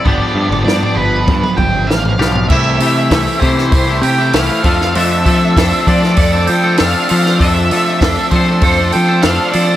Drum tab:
CC |----------------|x---------------|----------------|----------------|
HH |----------------|--o-o-o-o-o-o-o-|o-o-o-o-o-o-o-o-|o-o-o-o-o-o-o-o-|
SD |----o-------o-o-|----o--o----o--o|----o--o----o--o|----o-------o---|
T2 |--------ooo-----|----------------|----------------|----------------|
FT |o--o-o--o-o--o-o|----------------|----------------|----------------|
BD |o-------o-o-----|o---o-o-o-----o-|--o-o-o-o-------|o---o-o-o-------|